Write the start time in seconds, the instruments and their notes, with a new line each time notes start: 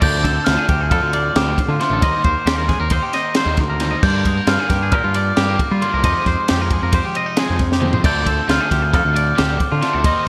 0.01 picked electric bass D2, overdriven electric guitar D3 F3 A3 D4, clean electric guitar D3 D5, glockenspiel G6, kick, crash
0.24 clean electric guitar A4, muted overdriven electric guitar stroke, kick, snare, ride
0.28 clean electric guitar C4
0.45 picked electric bass D2, overdriven electric guitar D3 F3 A3 D4, clean electric guitar A3 F4, glockenspiel F6, snare, ride
0.49 clean electric guitar F4
0.57 clean electric guitar G#4
0.69 picked electric bass D2, clean electric guitar C4 G4, muted overdriven electric guitar stroke, kick, ride
0.81 clean electric guitar G#4
0.90 picked electric bass F2, clean electric guitar A4, glockenspiel F6, muted overdriven electric guitar stroke, kick, ride
1.02 picked electric bass D2, clean electric guitar F4
1.13 clean electric guitar A2 F4 D5, muted overdriven electric guitar stroke, ride
1.36 picked electric bass D2, overdriven electric guitar D3 F3 A3 D4, clean electric guitar C4 G4, glockenspiel D6, snare, ride
1.58 muted overdriven electric guitar stroke, kick, ride
1.68 picked electric bass D3, clean electric guitar F4
1.80 overdriven electric guitar D3 F3 A3 D4, clean electric guitar D3, glockenspiel C6, snare, ride
1.90 picked electric bass A1, clean electric guitar A4
2.02 picked electric bass D#2, clean electric guitar D#2 D#5, overdriven electric guitar D#3 G3 C4 D#4, glockenspiel C6, kick, ride
2.24 picked electric bass D#2, clean electric guitar A#3 C5, muted overdriven electric guitar stroke, kick, ride
2.46 picked electric bass D#2, overdriven electric guitar D#3 G3 C4 D#4, clean electric guitar C4 G4, snare, ride
2.58 clean electric guitar A#4
2.68 clean electric guitar G#3 G#4, muted overdriven electric guitar stroke, kick, snare, ride
2.80 picked electric bass D#2, clean electric guitar A#3 A#4
2.90 clean electric guitar D#4 C5, muted overdriven electric guitar stroke, kick, ride
3.03 clean electric guitar G4
3.13 clean electric guitar D#2 C4 D#5, muted overdriven electric guitar stroke, snare, ride
3.35 overdriven electric guitar D#3 G3 C4 D#4, clean electric guitar G#3 C5, snare, ride
3.46 picked electric bass D#2, clean electric guitar A#3
3.57 picked electric bass D2, muted overdriven electric guitar stroke, kick, snare, ride
3.70 clean electric guitar A#4
3.80 clean electric guitar D#2, overdriven electric guitar D#3 G3 C4 D#4, snare, ride
3.91 clean electric guitar D#5
4.03 picked electric bass G2, clean electric guitar G2 D5, overdriven electric guitar D3 G3 A#3 D4, glockenspiel G6, kick, crash
4.24 clean electric guitar G#3 A#4, muted overdriven electric guitar stroke, kick, ride
4.37 clean electric guitar A#3
4.47 picked electric bass G2, overdriven electric guitar D3 G3 A#3 D4, clean electric guitar G3 F4, glockenspiel F6, snare, ride
4.59 clean electric guitar G#4
4.70 picked electric bass G2, clean electric guitar A#3 G4, muted overdriven electric guitar stroke, kick, snare, ride
4.83 clean electric guitar G#4
4.92 picked electric bass A#2, clean electric guitar G4 A#4, glockenspiel F6, muted overdriven electric guitar stroke, kick, ride
5.04 picked electric bass G2, clean electric guitar F4
5.14 clean electric guitar G2 F4 D5, muted overdriven electric guitar stroke, ride
5.36 picked electric bass G2, overdriven electric guitar D3 G3 A#3 D4, clean electric guitar G#3 G4, glockenspiel D6, snare, ride
5.49 clean electric guitar A#3
5.59 muted overdriven electric guitar stroke, kick, ride
5.71 picked electric bass G3, clean electric guitar F4
5.81 clean electric guitar G2, overdriven electric guitar D3 G3 A#3 D4, glockenspiel C6, ride
5.94 picked electric bass C2, clean electric guitar A#4, glockenspiel D6
6.04 clean electric guitar F2 F3 G#3 D#4 G4 D#5, picked electric bass F2, overdriven electric guitar C3 F3 G#3 C4, glockenspiel C6, kick, ride
6.26 picked electric bass F2, clean electric guitar G#3 C5, muted overdriven electric guitar stroke, kick, snare, ride
6.48 picked electric bass F2, overdriven electric guitar C3 F3 G#3 C4, clean electric guitar F3 C4 G4, snare, ride
6.61 clean electric guitar D#4 A#4
6.70 clean electric guitar G#3 G#4, muted overdriven electric guitar stroke, kick, ride
6.83 picked electric bass F2, clean electric guitar A#4
6.92 clean electric guitar G4 C5, muted overdriven electric guitar stroke, kick, ride
7.05 clean electric guitar G4
7.15 clean electric guitar C3 C4 D#5, muted overdriven electric guitar stroke, ride
7.26 clean electric guitar D#4
7.37 overdriven electric guitar C3 F3 G#3 C4, clean electric guitar G#3 G#4, snare, ride
7.50 picked electric bass F2
7.59 picked electric bass F2, muted overdriven electric guitar stroke, kick, snare, ride
7.72 clean electric guitar G4, snare
7.81 clean electric guitar F2, overdriven electric guitar C3 F3 G#3 C4, mid tom
7.93 clean electric guitar C5, floor tom
8.04 picked electric bass D2, overdriven electric guitar D3 F3 A3 D4, clean electric guitar D3 A3 C4 F4 A4 D5, glockenspiel G6, kick, crash, ride
8.26 clean electric guitar C4 A4, muted overdriven electric guitar stroke, kick, ride
8.48 picked electric bass D2, overdriven electric guitar D3 F3 A3 D4, clean electric guitar A3 F4, glockenspiel F6, snare, ride
8.61 clean electric guitar G#4
8.71 picked electric bass D2, clean electric guitar C4 G4, muted overdriven electric guitar stroke, kick, snare, ride
8.82 clean electric guitar G#4
8.94 picked electric bass F2, clean electric guitar A4, glockenspiel F6, muted overdriven electric guitar stroke, kick, snare, ride
9.04 picked electric bass D2, clean electric guitar F4
9.14 clean electric guitar A2 F4 D5, muted overdriven electric guitar stroke, ride
9.37 picked electric bass D2, overdriven electric guitar D3 F3 A3 D4, clean electric guitar C4 G4, glockenspiel D6, snare, ride
9.60 muted overdriven electric guitar stroke, kick, ride
9.72 picked electric bass D3, clean electric guitar F4
9.81 overdriven electric guitar D3 F3 A3 D4, clean electric guitar D3, glockenspiel C6, snare, ride
9.93 picked electric bass D2, clean electric guitar A4
10.04 picked electric bass D#2, clean electric guitar D#2 D#3 A#3 D#5, overdriven electric guitar D#3 G3 C4 D#4, glockenspiel C6, kick, ride
10.08 clean electric guitar C4 D#4